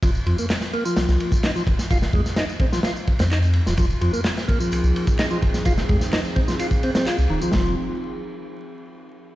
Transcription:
<<
  \new Staff \with { instrumentName = "Ambient pad" } { \time 4/4 \key f \minor \tempo 4 = 128 r1 | r1 | <f c' ees' aes'>1~ | <f c' ees' aes'>1 |
r1 | }
  \new Staff \with { instrumentName = "Tonewheel organ" } { \time 4/4 \key f \minor f16 r16 f16 bes16 r8 bes16 f4 r16 ees'16 f16 r8 | f'16 r16 aes16 r16 ees'16 r16 c'16 f16 f'16 r8 c'16 ees'16 r8 f16 | f16 r16 f16 bes16 r8 bes16 f4 r16 ees'16 f16 r8 | f'16 r16 aes16 r16 ees'16 r16 c'16 f16 f'16 r16 c'16 c'16 f'16 r16 ees16 f16 |
f8 r2. r8 | }
  \new Staff \with { instrumentName = "Sub bass" } { \clef bass \time 4/4 \key f \minor f,,16 r16 f,16 r4 r16 c,16 c,16 r4 f,,16 r16 | f,,16 r16 f,16 r2 f,8. r16 ees,,16 | f,,16 r16 f,16 r4 r16 c,16 c,16 r4 f,,16 r16 | f,,16 r16 f,16 r2 r8 c,16 ees,,16 r16 |
f,,8 r2. r8 | }
  \new DrumStaff \with { instrumentName = "Drums" } \drummode { \time 4/4 <bd cymr tamb>16 tamb16 cymr16 tamb16 <hc cymr sn tamb>16 <sn tamb>16 cymr16 tamb16 <cymr sn tamb>16 <sn tamb>16 cymr16 <bd tamb>16 <hc cymr sn tamb>16 tamb16 <bd cymr>16 <sn tamb>16 | <bd cymr tamb>16 <sn tamb>16 <bd cymr>16 <sn tamb>16 <hc cymr sn tamb>16 tamb16 <bd cymr>16 <sn tamb>16 <cymr sn tamb>16 tamb16 <bd cymr>16 <cymr sn tamb>16 <hc tamb>16 <cymr tamb>16 cymr16 <sn tamb>16 | <bd cymr tamb>16 tamb16 cymr16 tamb16 <hc cymr sn tamb>16 <sn tamb>16 <bd cymr>16 tamb16 <cymr tamb>16 tamb16 cymr16 <bd tamb>16 <hc cymr sn tamb>16 tamb16 <bd cymr>16 <sn tamb>16 | <bd cymr tamb>16 <sn tamb>16 <bd cymr>16 <sn tamb>16 <hc cymr sn tamb>16 tamb16 <bd cymr>16 <sn tamb>16 <cymr tamb>16 <bd tamb>16 cymr16 <sn tamb>16 <hc cymr tamb>16 tamb8 tamb16 |
<bd sn>4 r4 r4 r4 | }
>>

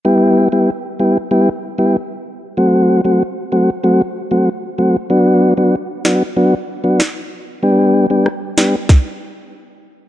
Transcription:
<<
  \new Staff \with { instrumentName = "Tonewheel organ" } { \time 4/4 \key e \minor \tempo 4 = 95 <g b e' g'>8. <g b e' g'>16 r8 <g b e' g'>16 r16 <g b e' g'>16 r8 <g b e' g'>16 r4 | <fis a c' fis'>8. <fis a c' fis'>16 r8 <fis a c' fis'>16 r16 <fis a c' fis'>16 r8 <fis a c' fis'>16 r8 <fis a c' fis'>16 r16 | <fis b d' fis'>8. <fis b d' fis'>16 r8 <fis b d' fis'>16 r16 <fis b d' fis'>16 r8 <fis b d' fis'>16 r4 | <g b d' g'>8. <g b d' g'>16 r8 <g b d' g'>16 r2 r16 | }
  \new DrumStaff \with { instrumentName = "Drums" } \drummode { \time 4/4 r4 r4 r4 r4 | r4 r4 r4 r4 | r4 r8 sn8 r4 sn4 | r4 ss8 sn8 <bd sn>4 r4 | }
>>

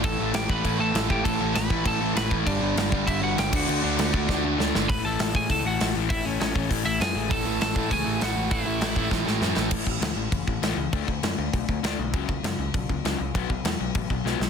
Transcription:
<<
  \new Staff \with { instrumentName = "Lead electric guitar" } { \time 4/4 \key d \major \tempo 4 = 199 <a' a''>4 <g' g''>8 <b' b''>4 <a' a''>4 <g' g''>8 | <a' a''>4 <b' b''>4 <a' a''>4 <b' b''>8. r16 | <d' d''>2 <e' e''>8 <fis' fis''>8 <g' g''>8 <fis' fis''>8~ | <fis' fis''>2. r4 |
\key a \major <b' b''>8 <a' a''>4 <gis' gis''>8 <a' a''>8 <fis' fis''>4 r8 | <e' e''>8 <cis' cis''>8 <cis' cis''>4 r8 <e' e''>8 <gis' gis''>4 | <a' a''>4 <a' a''>4 <gis' gis''>4 <fis' fis''>4 | <e' e''>2 r2 |
r1 | r1 | r1 | r1 | }
  \new Staff \with { instrumentName = "Overdriven electric guitar" } { \clef bass \time 4/4 \key d \major <a, e a>8 <a, e a>8 <a, e a>8 <a, e a>8 <a, e a>8 <a, e a>8 <a, e a>8 <a, e a>8 | <a, e a>8 <a, e a>8 <a, e a>8 <a, e a>8 <a, e a>8 <a, e a>8 <a, e a>8 <a, e a>8 | <g, d g>8 <g, d g>8 <g, d g>8 <g, d g>8 <g, d g>8 <g, d g>8 <g, d g>8 <d a d'>8 | <d a d'>8 <d a d'>8 <d a d'>8 <d a d'>8 <d a d'>8 <d a d'>8 <d a d'>8 <d a d'>8 |
\key a \major <a, e a>8 <a, e a>8 <a, e a>8 <a, e a>8 <a, e a>8 <a, e a>8 <a, e a>8 <a, e a>8 | <a, e a>8 <a, e a>8 <a, e a>8 <a, e a>8 <a, e a>8 <a, e a>8 <a, e a>8 <a, e a>8 | <a, e a>8 <a, e a>8 <a, e a>8 <a, e a>8 <a, e a>8 <a, e a>8 <a, e a>8 <a, e a>8 | <a, e a>8 <a, e a>8 <a, e a>8 <a, e a>8 <a, e a>8 <a, e a>8 <a, e a>8 <a, e a>8 |
<a, e a>8 <a, e>8 <a, e>8 <a, e>8 <a, e>8 <a, e>8 <a, e a>8 <a, e>8 | <d a d'>8 <d a>8 <d a>8 <d a>8 <d a>8 <d a>8 <d a d'>8 <d a>8 | <fis, cis fis>8 <fis, cis>8 <fis, cis>8 <fis, cis>8 <fis, cis>8 <fis, cis>8 <fis, cis fis>8 <fis, cis>8 | <b, fis b>8 <b, fis>8 <b, fis>8 <b, fis>8 <b, fis>8 <b, fis>8 <b, fis b>8 <b, fis>8 | }
  \new Staff \with { instrumentName = "Overdriven electric guitar" } { \clef bass \time 4/4 \key d \major <a, e a>8 <a, e a>8 <a, e a>8 <a, e a>8 <a, e a>8 <a, e a>8 <a, e a>8 <a, e a>8 | <a, e a>8 <a, e a>8 <a, e a>8 <a, e a>8 <a, e a>8 <a, e a>8 <a, e a>8 <a, e a>8 | <g, d g>8 <g, d g>8 <g, d g>8 <g, d g>8 <g, d g>8 <g, d g>8 <g, d g>8 <d a d'>8 | <d a d'>8 <d a d'>8 <d a d'>8 <d a d'>8 <d a d'>8 <d a d'>8 <d a d'>8 <d a d'>8 |
\key a \major r1 | r1 | <a, e a>8 <a, e a>8 <a, e a>8 <a, e a>8 <a, e a>8 <a, e a>8 <a, e a>8 <a, e a>8 | <a, e a>8 <a, e a>8 <a, e a>8 <a, e a>8 <a, e a>8 <a, e a>8 <a, e a>8 <a, e a>8 |
r1 | r1 | r1 | r1 | }
  \new Staff \with { instrumentName = "Picked electric bass" } { \clef bass \time 4/4 \key d \major a,,8 a,,8 a,,8 a,,8 a,,4 a,,8 a,,8 | a,,8 a,,8 a,,8 a,,8 a,,4 a,,8 a,,8 | g,,8 g,,8 g,,8 g,,8 g,,4 g,,8 d,8 | d,8 d,8 d,8 d,8 d,4 d,8 g,,8 |
\key a \major a,,8 a,,8 a,,8 a,8 cis,8 a,,8 a,,8 a,,8 | a,,8 a,,8 a,,8 a,,8 a,,8 a,,8 fis,8 a,,8 | a,,8 a,,8 a,,8 a,8 cis,8 a,,8 a,,8 a,,8 | a,,8 a,,8 a,,8 a,,8 a,,8 a,,8 fis,8 a,,8 |
a,,8 a,,8 d,8 a,,8 fis,,8 a,,8 a,,8 cis,8 | d,8 d,8 fis,8 d,8 b,,8 d,8 d,8 b,,8 | cis,8 cis,8 fis,8 cis,8 b,,8 cis,8 cis,8 cis,8 | b,,8 b,,8 e,8 b,,8 a,,8 b,,8 b,,8 b,,8 | }
  \new DrumStaff \with { instrumentName = "Drums" } \drummode { \time 4/4 <cymc bd>4 <cymc sn>8 bd8 <cymc bd>4 <cymc sn>8 bd8 | <cymc bd>4 <cymc sn>8 bd8 <cymc bd>4 <cymc sn>8 bd8 | <cymc bd>4 <cymc sn>8 bd8 <cymc bd>4 <cymc sn>8 <cymc bd>8 | cymc4 <cymc sn>8 bd8 <bd sn>4 sn8 sn8 |
<hho bd>4 <hho sn>8 bd8 <hho bd>4 <hho sn>4 | <hho bd>4 <hho sn>8 bd8 <hho bd>4 <hho sn>4 | <hho bd>4 <hho sn>8 bd8 <hho bd>4 <hho sn>4 | <hho bd>4 <hho sn>8 bd8 <bd sn>8 sn8 sn8 sn8 |
<cymc bd>8 bd8 <cymc sn>4 <cymc bd>8 bd8 <cymc sn>4 | <cymc bd>8 bd8 <cymc sn>4 <cymc bd>8 bd8 <cymc sn>4 | <cymc bd>8 bd8 <cymc sn>4 <cymc bd>8 bd8 <cymc sn>4 | <cymc bd>8 bd8 <cymc sn>4 <cymc bd>8 bd8 sn8 sn8 | }
>>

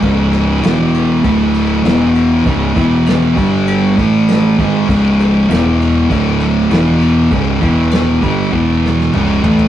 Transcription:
<<
  \new Staff \with { instrumentName = "Distorted electric guitar" } { \clef bass \time 4/4 \key e \major \tempo 4 = 99 <cis, gis, cis>4 <e, b, e>4 <d, a, d>4 <e, b, e>4 | <cis, gis, cis>8 <e, b, e>4 <g, d g>4 <a, e a>4 <gis, dis gis>8 | <cis, gis, cis>4 <e, b, e>4 <d, a, d>4 <e, b, e>4 | <cis, gis, cis>8 <e, b, e>4 <g, d g>8 <e, b, e>4 <cis, gis, cis>8 <a, e a>8 | }
  \new Staff \with { instrumentName = "Distorted electric guitar" } { \clef bass \time 4/4 \key e \major <cis, gis, cis>4 <e, b, e>4 <d, a, d>4 <e, b, e>4 | <cis, gis, cis>8 <e, b, e>4 <g, d g>4 <a, e a>4 <gis, dis gis>8 | <cis, gis, cis>4 <e, b, e>4 <d, a, d>4 <e, b, e>4 | <cis, gis, cis>8 <e, b, e>4 <g, d g>8 <e, b, e>4 <cis, gis, cis>8 <a, e a>8 | }
  \new Staff \with { instrumentName = "Fingered electric bass" } { \clef bass \time 4/4 \key e \major cis,,4 e,,4 d,,4 e,,4 | cis,,8 e,,4 g,,4 a,,4 gis,,8 | cis,,4 e,,4 d,,4 e,,4 | cis,,8 e,,4 g,,8 e,,4 cis,,8 a,,8 | }
  \new DrumStaff \with { instrumentName = "Drums" } \drummode { \time 4/4 <bd cymr>8 cymr8 <cymr sn>8 cymr8 <bd cymr>8 cymr8 <cymr sn>8 cymr8 | <bd cymr>8 <bd cymr>8 <cymr sn>8 <bd cymr>8 cymr8 <bd cymr>8 <cymr sn>8 <bd cymr>8 | <bd cymr>8 cymr8 <cymr sn>8 cymr8 <bd cymr>8 cymr8 <cymr sn>8 cymr8 | <bd cymr>8 <bd cymr>8 <cymr sn>8 <bd cymr>8 bd8 sn16 sn16 toml8 tomfh16 tomfh16 | }
>>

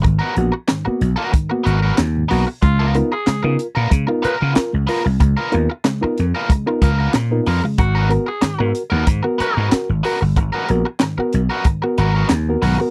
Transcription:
<<
  \new Staff \with { instrumentName = "Tenor saxophone" } { \time 4/4 \key aes \dorian \tempo 4 = 93 r1 | f'8 r16 aes'8. r4 ces''16 r4 r16 | r1 | ges'8 r16 aes'8. r4 ces''16 r4 r16 |
r1 | }
  \new Staff \with { instrumentName = "Overdriven electric guitar" } { \time 4/4 \key aes \dorian r16 <ces' ges' bes'>16 r4 r16 <ces' ges' bes'>16 r8 <ces' ges' bes'>16 <ces' ges' bes'>16 r8 <ces' ges' bes'>16 r16 | r16 <ces' f' bes'>16 r4 r16 <ces' f' bes'>16 r8 <ces' f' bes'>16 <ces' f' bes'>16 r8 <ces' f' bes'>16 r16 | r16 <ces' f' bes'>16 r4 r16 <ces' f' bes'>16 r8 <ces' f' bes'>16 <ces' f' bes'>16 r8 <ces' f' bes'>16 r16 | r16 <ces' ges' bes'>16 r4 r16 <ces' ges' bes'>16 r8 <ces' ges' bes'>16 <ces' ges' bes'>16 r8 <ces' ges' bes'>16 r16 |
r16 <ces' ges' bes'>16 r4 r16 <ces' ges' bes'>16 r8 <ces' ges' bes'>16 <ces' ges' bes'>16 r8 <ces' ges' bes'>16 r16 | }
  \new Staff \with { instrumentName = "Reed electric piano" } { \time 4/4 \key aes \dorian <aes, ees>16 <ces' ges'>16 <bes ces' ges'>16 r16 <aes, ees>16 <bes ces' ges'>16 r8 <aes, ees>16 <bes ces' ges'>16 <ces' ges'>16 r16 <ces' ges'>16 <aes, ees>16 <bes ces' ges'>16 r16 | <des aes>16 <f' bes'>16 <ces' ees' f' bes'>16 r16 <des aes>16 <ces' ees' f' bes'>16 <f' bes'>16 r16 <des aes>16 <ces' ees' f' bes'>16 <f' bes'>16 r16 <f' bes'>16 <des aes>16 <f' bes'>16 r16 | <des aes>16 <f' bes'>16 <ces' ees' f' bes'>16 r16 <des aes>16 <ces' ees' f' bes'>16 <f' bes'>16 r16 <des aes>16 <ces' ees' f' bes'>16 <f' bes'>16 r8 <ces' ees' f' bes'>16 r16 <des aes>16 | <aes, ees>16 <ges' bes'>16 <ces' ges' bes'>16 r16 <aes, ees>16 <ces' ges' bes'>16 <ges' bes'>16 r16 <aes, ees>16 <ces' ges' bes'>16 <ges' bes'>16 r16 <ges' bes'>16 <aes, ees>16 <ges' bes'>16 r16 |
<aes, ees>16 <ges' bes'>16 <ces' ges' bes'>16 r16 <aes, ees>16 <ces' ges' bes'>16 r8 <aes, ees>16 <ces' ges' bes'>16 r8. <ces' ges' bes'>16 <aes, ees>16 <ces' ges' bes'>16 | }
  \new Staff \with { instrumentName = "Slap bass" } { \clef bass \time 4/4 \key aes \dorian aes,,16 r16 bes,,16 r8. ces,16 r8. aes,,8 ees,8 ces,16 r16 | des,8. r8 des16 r16 bes,16 des16 r8 des16 r16 des,16 r16 c,16 | des,16 r16 ees,16 r8. f,16 r8. des,8 bes,8 f,16 r16 | aes,,8. r8 aes,16 r16 ees,16 aes,16 r8 aes,16 r16 aes,,16 r16 g,,16 |
aes,,16 r16 bes,,16 r8. ces,16 r8. aes,,8 ees,8 ces,16 r16 | }
  \new DrumStaff \with { instrumentName = "Drums" } \drummode { \time 4/4 <hh bd>8 hh8 <hc hh sn>8 hh8 <hh bd>8 hh8 <hc hh sn>8 hho8 | <hh bd>8 hh8 <hc hh sn>8 hh8 <hh bd>8 hh8 <hc hh sn>8 hho8 | <hh bd>8 hh8 <hc hh sn>8 hh8 <hh bd>8 <hh bd>8 <hc hh sn>8 hho8 | <hh bd>8 hh8 <hc hh sn>8 hh8 <hh bd>8 hh8 <hc hh sn>8 hho8 |
<hh bd>8 hh8 <hc hh sn>8 hh8 <hh bd>8 hh8 <hc hh sn>8 hho8 | }
>>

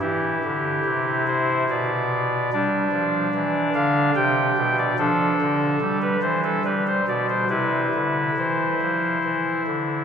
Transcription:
<<
  \new Staff \with { instrumentName = "Pipe organ" } { \time 3/4 \key c \major \tempo 4 = 72 << { g'4. c''8 d''4 | d''4. f''8 g''8. d''16 | a'4~ a'16 b'16 c''16 a'16 b'16 c''16 d''16 c''16 | b'4 c''4. r8 | } \\ { e'2 r4 | d'2 r4 | d'4 r2 | e'2. | } >> }
  \new Staff \with { instrumentName = "Pipe organ" } { \clef bass \time 3/4 \key c \major e8 d8 c4 b,4 | g8 f8 e8 d8 c8 b,8 | f8 d8 g8 e8 g8 b,8 | c8 d8 e8 f8 e8 d8 | }
>>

